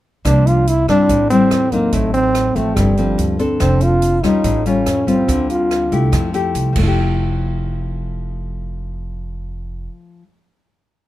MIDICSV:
0, 0, Header, 1, 5, 480
1, 0, Start_track
1, 0, Key_signature, -1, "major"
1, 0, Tempo, 420168
1, 284, Time_signature, 4, 2, 24, 8
1, 12657, End_track
2, 0, Start_track
2, 0, Title_t, "Trombone"
2, 0, Program_c, 0, 57
2, 290, Note_on_c, 0, 62, 93
2, 535, Note_on_c, 0, 65, 85
2, 552, Note_off_c, 0, 62, 0
2, 779, Note_on_c, 0, 64, 93
2, 796, Note_off_c, 0, 65, 0
2, 1011, Note_off_c, 0, 64, 0
2, 1021, Note_on_c, 0, 62, 91
2, 1459, Note_off_c, 0, 62, 0
2, 1489, Note_on_c, 0, 60, 82
2, 1977, Note_on_c, 0, 58, 81
2, 1994, Note_off_c, 0, 60, 0
2, 2207, Note_on_c, 0, 57, 78
2, 2224, Note_off_c, 0, 58, 0
2, 2435, Note_off_c, 0, 57, 0
2, 2442, Note_on_c, 0, 60, 90
2, 2922, Note_on_c, 0, 57, 81
2, 2939, Note_off_c, 0, 60, 0
2, 3153, Note_on_c, 0, 55, 70
2, 3171, Note_off_c, 0, 57, 0
2, 3876, Note_off_c, 0, 55, 0
2, 4111, Note_on_c, 0, 60, 84
2, 4368, Note_on_c, 0, 65, 86
2, 4385, Note_off_c, 0, 60, 0
2, 4844, Note_on_c, 0, 63, 87
2, 4861, Note_off_c, 0, 65, 0
2, 5327, Note_on_c, 0, 61, 84
2, 5344, Note_off_c, 0, 63, 0
2, 5802, Note_on_c, 0, 60, 84
2, 5819, Note_off_c, 0, 61, 0
2, 6281, Note_off_c, 0, 60, 0
2, 6296, Note_on_c, 0, 65, 70
2, 6963, Note_off_c, 0, 65, 0
2, 12657, End_track
3, 0, Start_track
3, 0, Title_t, "Nylon-string guitar"
3, 0, Program_c, 1, 24
3, 282, Note_on_c, 1, 48, 46
3, 288, Note_on_c, 1, 53, 48
3, 291, Note_on_c, 1, 62, 52
3, 293, Note_on_c, 1, 58, 46
3, 762, Note_off_c, 1, 53, 0
3, 762, Note_off_c, 1, 58, 0
3, 764, Note_off_c, 1, 62, 0
3, 1013, Note_on_c, 1, 55, 56
3, 1018, Note_on_c, 1, 60, 61
3, 1021, Note_on_c, 1, 64, 60
3, 1219, Note_off_c, 1, 48, 0
3, 1253, Note_on_c, 1, 45, 48
3, 1449, Note_off_c, 1, 55, 0
3, 1451, Note_off_c, 1, 60, 0
3, 1453, Note_off_c, 1, 64, 0
3, 1497, Note_on_c, 1, 55, 59
3, 1500, Note_on_c, 1, 60, 66
3, 1507, Note_on_c, 1, 64, 65
3, 1931, Note_off_c, 1, 55, 0
3, 1932, Note_off_c, 1, 60, 0
3, 1936, Note_off_c, 1, 64, 0
3, 1971, Note_on_c, 1, 54, 57
3, 1975, Note_on_c, 1, 60, 53
3, 1983, Note_on_c, 1, 63, 61
3, 2182, Note_off_c, 1, 45, 0
3, 2213, Note_on_c, 1, 45, 51
3, 2887, Note_off_c, 1, 54, 0
3, 2890, Note_off_c, 1, 60, 0
3, 2891, Note_off_c, 1, 63, 0
3, 2918, Note_on_c, 1, 53, 56
3, 2923, Note_on_c, 1, 57, 54
3, 2925, Note_on_c, 1, 60, 64
3, 3142, Note_off_c, 1, 45, 0
3, 3164, Note_on_c, 1, 43, 52
3, 3360, Note_off_c, 1, 53, 0
3, 3362, Note_off_c, 1, 57, 0
3, 3364, Note_off_c, 1, 60, 0
3, 3405, Note_on_c, 1, 53, 59
3, 3409, Note_on_c, 1, 57, 62
3, 3411, Note_on_c, 1, 60, 64
3, 3844, Note_off_c, 1, 53, 0
3, 3845, Note_off_c, 1, 57, 0
3, 3845, Note_off_c, 1, 60, 0
3, 3874, Note_on_c, 1, 60, 65
3, 3877, Note_on_c, 1, 62, 65
3, 3883, Note_on_c, 1, 69, 59
3, 4097, Note_off_c, 1, 43, 0
3, 4114, Note_on_c, 1, 53, 49
3, 4798, Note_off_c, 1, 60, 0
3, 4799, Note_off_c, 1, 62, 0
3, 4802, Note_off_c, 1, 69, 0
3, 4831, Note_off_c, 1, 53, 0
3, 4836, Note_on_c, 1, 55, 58
3, 4844, Note_on_c, 1, 61, 56
3, 4846, Note_on_c, 1, 65, 64
3, 5079, Note_on_c, 1, 45, 54
3, 5279, Note_off_c, 1, 55, 0
3, 5283, Note_off_c, 1, 61, 0
3, 5283, Note_off_c, 1, 65, 0
3, 5322, Note_on_c, 1, 55, 59
3, 5328, Note_on_c, 1, 61, 63
3, 5334, Note_on_c, 1, 65, 68
3, 5762, Note_off_c, 1, 55, 0
3, 5765, Note_off_c, 1, 61, 0
3, 5769, Note_off_c, 1, 65, 0
3, 5789, Note_on_c, 1, 55, 59
3, 5798, Note_on_c, 1, 60, 56
3, 5802, Note_on_c, 1, 65, 59
3, 6015, Note_off_c, 1, 45, 0
3, 6036, Note_on_c, 1, 50, 52
3, 6717, Note_off_c, 1, 55, 0
3, 6721, Note_off_c, 1, 60, 0
3, 6723, Note_off_c, 1, 65, 0
3, 6762, Note_on_c, 1, 57, 54
3, 6767, Note_on_c, 1, 64, 59
3, 6773, Note_on_c, 1, 67, 67
3, 6975, Note_off_c, 1, 50, 0
3, 6994, Note_on_c, 1, 53, 52
3, 7204, Note_off_c, 1, 57, 0
3, 7204, Note_off_c, 1, 64, 0
3, 7209, Note_off_c, 1, 67, 0
3, 7237, Note_on_c, 1, 57, 61
3, 7243, Note_on_c, 1, 64, 61
3, 7251, Note_on_c, 1, 67, 60
3, 7670, Note_off_c, 1, 53, 0
3, 7684, Note_on_c, 1, 53, 54
3, 7719, Note_off_c, 1, 57, 0
3, 7723, Note_off_c, 1, 64, 0
3, 7724, Note_off_c, 1, 67, 0
3, 7745, Note_on_c, 1, 57, 61
3, 7805, Note_on_c, 1, 64, 59
3, 7854, Note_on_c, 1, 67, 61
3, 11682, Note_off_c, 1, 53, 0
3, 11744, Note_off_c, 1, 57, 0
3, 11803, Note_off_c, 1, 64, 0
3, 11853, Note_off_c, 1, 67, 0
3, 12657, End_track
4, 0, Start_track
4, 0, Title_t, "Upright bass"
4, 0, Program_c, 2, 32
4, 286, Note_on_c, 2, 36, 95
4, 958, Note_off_c, 2, 36, 0
4, 1007, Note_on_c, 2, 43, 90
4, 1228, Note_off_c, 2, 43, 0
4, 1249, Note_on_c, 2, 33, 85
4, 1692, Note_off_c, 2, 33, 0
4, 1731, Note_on_c, 2, 40, 75
4, 2173, Note_off_c, 2, 40, 0
4, 2205, Note_on_c, 2, 33, 89
4, 2877, Note_off_c, 2, 33, 0
4, 2919, Note_on_c, 2, 33, 85
4, 3143, Note_off_c, 2, 33, 0
4, 3161, Note_on_c, 2, 31, 98
4, 3607, Note_off_c, 2, 31, 0
4, 3632, Note_on_c, 2, 38, 84
4, 4081, Note_off_c, 2, 38, 0
4, 4111, Note_on_c, 2, 29, 104
4, 4789, Note_off_c, 2, 29, 0
4, 4840, Note_on_c, 2, 40, 81
4, 5063, Note_off_c, 2, 40, 0
4, 5074, Note_on_c, 2, 33, 89
4, 5523, Note_off_c, 2, 33, 0
4, 5558, Note_on_c, 2, 41, 77
4, 6005, Note_off_c, 2, 41, 0
4, 6034, Note_on_c, 2, 38, 96
4, 6712, Note_off_c, 2, 38, 0
4, 6762, Note_on_c, 2, 36, 82
4, 6984, Note_off_c, 2, 36, 0
4, 6997, Note_on_c, 2, 41, 91
4, 7446, Note_off_c, 2, 41, 0
4, 7477, Note_on_c, 2, 36, 81
4, 7703, Note_off_c, 2, 36, 0
4, 7724, Note_on_c, 2, 29, 92
4, 11269, Note_off_c, 2, 29, 0
4, 12657, End_track
5, 0, Start_track
5, 0, Title_t, "Drums"
5, 287, Note_on_c, 9, 37, 59
5, 287, Note_on_c, 9, 42, 39
5, 288, Note_on_c, 9, 36, 56
5, 401, Note_off_c, 9, 37, 0
5, 401, Note_off_c, 9, 42, 0
5, 402, Note_off_c, 9, 36, 0
5, 534, Note_on_c, 9, 42, 25
5, 648, Note_off_c, 9, 42, 0
5, 769, Note_on_c, 9, 42, 39
5, 884, Note_off_c, 9, 42, 0
5, 1009, Note_on_c, 9, 36, 23
5, 1011, Note_on_c, 9, 37, 53
5, 1011, Note_on_c, 9, 42, 24
5, 1123, Note_off_c, 9, 36, 0
5, 1126, Note_off_c, 9, 37, 0
5, 1126, Note_off_c, 9, 42, 0
5, 1248, Note_on_c, 9, 36, 55
5, 1248, Note_on_c, 9, 42, 45
5, 1362, Note_off_c, 9, 42, 0
5, 1363, Note_off_c, 9, 36, 0
5, 1487, Note_on_c, 9, 42, 30
5, 1602, Note_off_c, 9, 42, 0
5, 1725, Note_on_c, 9, 37, 58
5, 1725, Note_on_c, 9, 42, 38
5, 1839, Note_off_c, 9, 37, 0
5, 1839, Note_off_c, 9, 42, 0
5, 1963, Note_on_c, 9, 42, 26
5, 1965, Note_on_c, 9, 36, 21
5, 2077, Note_off_c, 9, 42, 0
5, 2079, Note_off_c, 9, 36, 0
5, 2197, Note_on_c, 9, 42, 42
5, 2204, Note_on_c, 9, 36, 59
5, 2312, Note_off_c, 9, 42, 0
5, 2318, Note_off_c, 9, 36, 0
5, 2441, Note_on_c, 9, 42, 22
5, 2555, Note_off_c, 9, 42, 0
5, 2682, Note_on_c, 9, 37, 54
5, 2682, Note_on_c, 9, 42, 35
5, 2796, Note_off_c, 9, 37, 0
5, 2796, Note_off_c, 9, 42, 0
5, 2921, Note_on_c, 9, 36, 19
5, 2922, Note_on_c, 9, 42, 23
5, 3036, Note_off_c, 9, 36, 0
5, 3036, Note_off_c, 9, 42, 0
5, 3158, Note_on_c, 9, 37, 55
5, 3158, Note_on_c, 9, 42, 36
5, 3161, Note_on_c, 9, 36, 55
5, 3272, Note_off_c, 9, 37, 0
5, 3272, Note_off_c, 9, 42, 0
5, 3275, Note_off_c, 9, 36, 0
5, 3396, Note_on_c, 9, 42, 25
5, 3510, Note_off_c, 9, 42, 0
5, 3638, Note_on_c, 9, 42, 38
5, 3752, Note_off_c, 9, 42, 0
5, 3876, Note_on_c, 9, 42, 22
5, 3877, Note_on_c, 9, 36, 21
5, 3990, Note_off_c, 9, 42, 0
5, 3991, Note_off_c, 9, 36, 0
5, 4113, Note_on_c, 9, 37, 58
5, 4113, Note_on_c, 9, 42, 39
5, 4115, Note_on_c, 9, 36, 54
5, 4227, Note_off_c, 9, 37, 0
5, 4227, Note_off_c, 9, 42, 0
5, 4230, Note_off_c, 9, 36, 0
5, 4347, Note_on_c, 9, 42, 24
5, 4462, Note_off_c, 9, 42, 0
5, 4591, Note_on_c, 9, 42, 38
5, 4705, Note_off_c, 9, 42, 0
5, 4836, Note_on_c, 9, 36, 21
5, 4840, Note_on_c, 9, 37, 53
5, 4840, Note_on_c, 9, 42, 26
5, 4950, Note_off_c, 9, 36, 0
5, 4954, Note_off_c, 9, 37, 0
5, 4954, Note_off_c, 9, 42, 0
5, 5072, Note_on_c, 9, 42, 42
5, 5076, Note_on_c, 9, 36, 54
5, 5187, Note_off_c, 9, 42, 0
5, 5190, Note_off_c, 9, 36, 0
5, 5319, Note_on_c, 9, 42, 28
5, 5434, Note_off_c, 9, 42, 0
5, 5555, Note_on_c, 9, 37, 56
5, 5555, Note_on_c, 9, 42, 43
5, 5669, Note_off_c, 9, 37, 0
5, 5669, Note_off_c, 9, 42, 0
5, 5798, Note_on_c, 9, 36, 22
5, 5801, Note_on_c, 9, 42, 26
5, 5912, Note_off_c, 9, 36, 0
5, 5915, Note_off_c, 9, 42, 0
5, 6039, Note_on_c, 9, 36, 54
5, 6039, Note_on_c, 9, 42, 42
5, 6153, Note_off_c, 9, 36, 0
5, 6153, Note_off_c, 9, 42, 0
5, 6278, Note_on_c, 9, 42, 23
5, 6392, Note_off_c, 9, 42, 0
5, 6522, Note_on_c, 9, 37, 50
5, 6522, Note_on_c, 9, 42, 35
5, 6636, Note_off_c, 9, 37, 0
5, 6636, Note_off_c, 9, 42, 0
5, 6761, Note_on_c, 9, 36, 21
5, 6761, Note_on_c, 9, 42, 26
5, 6875, Note_off_c, 9, 36, 0
5, 6875, Note_off_c, 9, 42, 0
5, 6998, Note_on_c, 9, 37, 59
5, 6998, Note_on_c, 9, 42, 38
5, 7000, Note_on_c, 9, 36, 57
5, 7112, Note_off_c, 9, 37, 0
5, 7112, Note_off_c, 9, 42, 0
5, 7114, Note_off_c, 9, 36, 0
5, 7241, Note_on_c, 9, 42, 27
5, 7356, Note_off_c, 9, 42, 0
5, 7480, Note_on_c, 9, 42, 40
5, 7594, Note_off_c, 9, 42, 0
5, 7718, Note_on_c, 9, 49, 49
5, 7720, Note_on_c, 9, 36, 69
5, 7832, Note_off_c, 9, 49, 0
5, 7835, Note_off_c, 9, 36, 0
5, 12657, End_track
0, 0, End_of_file